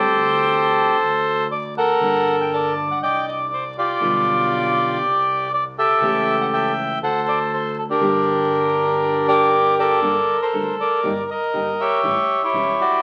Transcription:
Already playing: G4 A4 C5
0.00 D2 D3 G3 C4 G4
1.00 D2
1.51 D5
1.78 A4 A#4 F#5
1.99 G1 D3 G3 A#3 D4
2.41 G5
2.54 D5 A5
2.91 F#5
3.01 C2 D5 D#5 G5
3.28 D#5
3.54 C5
3.78 F4 G4 D5
4.00 B1 B2 D3 G3 B3 F4
5.01 C2
5.53 D5
5.78 G4 A4 E5
6.00 C#2 C#3 E3 A3 C#4 G4
6.41 F#5
6.53 E5 G5
7.00 D2 A4 C5 F#5
7.28 D5
7.53 C5
7.78 A4
7.90 D4 G4 A#4
7.99 G1 D3 G3 A#3 D4 G4
9.28 G4 A#4 D5
9.79 A4 A#4 D5
10.02 G1 D3 G3 A#3 D4 A4
10.42 A4 C5
10.53 D2 D3 G3 A#3 D4 A4
10.80 A#4 D5
11.03 G1 D3 G3 A#3 D#4 G4
11.31 A#4 D#5
11.53 G1 D3 G3 A#3 D#4 G4
11.80 G4 C#5 E5
12.03 A1 E3 G3 C#4 E4
12.43 E4 G4 C#5
12.53 E1 E3 G3 C#4 E4
12.80 F#4 D5

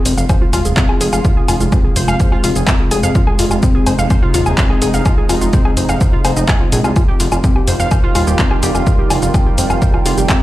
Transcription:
Already playing: C3 G#3 F4, impact
0.06 F1 C5, open hi-hat, shaker
0.18 F1 F5, shaker
0.29 C5, kick, low woodblock, shaker
0.41 F4
0.53 D#1 F4, open hi-hat, low woodblock, shaker
0.65 D#1 G#4, shaker
0.77 C4, kick, clap, shaker
0.89 G#4, low woodblock
1.01 F1 G#4, open hi-hat, shaker
1.13 F1 F5, low woodblock, shaker
1.25 F4, kick, shaker
1.37 G#4
1.48 F1 F4, open hi-hat, low woodblock, shaker
1.60 F1 F4, shaker
1.72 C4, kick, low woodblock, shaker
1.84 G#4
1.96 F1 C5, open hi-hat, shaker
2.08 F1 F5, low woodblock, shaker
2.20 C5, kick, shaker
2.32 F4, low woodblock
2.44 F1 F4, open hi-hat, shaker
2.56 F1 G#4, shaker
2.68 C4, kick, clap, low woodblock, shaker
2.80 G#4
2.91 F1 G#4, open hi-hat, low woodblock, shaker
3.03 F2 F5, shaker
3.15 D#4 F4, kick, shaker
3.27 G#4, low woodblock
3.39 F1 F4, open hi-hat, shaker
3.51 F1 F4, low woodblock, shaker
3.63 C4, kick, shaker
3.75 G#4
3.87 F1 C5, open hi-hat, low woodblock, shaker
3.99 F1 F5, shaker
4.10 C5, kick, low woodblock, shaker
4.22 F4
4.34 D#1 F4, open hi-hat, shaker
4.46 D#1 G#4, low woodblock, shaker
4.58 C4, kick, clap, shaker
4.70 G#4, low woodblock
4.82 F1 G#4, open hi-hat, shaker
4.94 F1 F5, shaker
5.06 F4, kick, low woodblock, shaker
5.18 G#4
5.29 F1 F4, open hi-hat, low woodblock, shaker
5.41 F1 F4, shaker
5.53 C4, kick, shaker
5.65 G#4, low woodblock
5.77 F1 C5, open hi-hat, shaker
5.89 F1 F5, low woodblock, shaker
6.01 C5, kick, shaker
6.13 F4
6.25 F1 C5, open hi-hat, low woodblock, shaker
6.37 F1 D#4, shaker
6.48 G#5, kick, clap, low woodblock, shaker
6.61 F4
6.72 A#1 G#4, open hi-hat, shaker
6.84 C2 F4, low woodblock, shaker
6.96 D#3 G3 D#4 F4, kick, low woodblock, shaker
7.07 G4 A#4
7.20 F1 F4, open hi-hat, shaker
7.32 F1 F4, low woodblock, shaker
7.44 C4 G5, kick, shaker
7.56 G4, low woodblock
7.68 F1 C5, open hi-hat, shaker
7.80 F1 F5, shaker
7.91 C5, kick, low woodblock, shaker
8.03 F4
8.15 D#1 F4, open hi-hat, low woodblock, shaker
8.27 D#1 G4, shaker
8.39 C4, kick, clap, shaker
8.51 G4, low woodblock
8.63 F1 G4, open hi-hat, shaker
8.75 F1 F4, low woodblock, shaker
8.87 F4, kick, shaker
8.99 G4
9.10 F1 F4, open hi-hat, low woodblock, shaker
9.22 F1 F4, shaker
9.34 C4, kick, low woodblock, shaker
9.46 G4
9.58 F1 C5, open hi-hat, shaker
9.70 F1 F5, low woodblock, shaker
9.82 C5, kick, shaker
9.94 F4, low woodblock
10.06 F1 F4, open hi-hat, shaker
10.18 F1 G4, shaker
10.29 C4, kick, clap, low woodblock, shaker

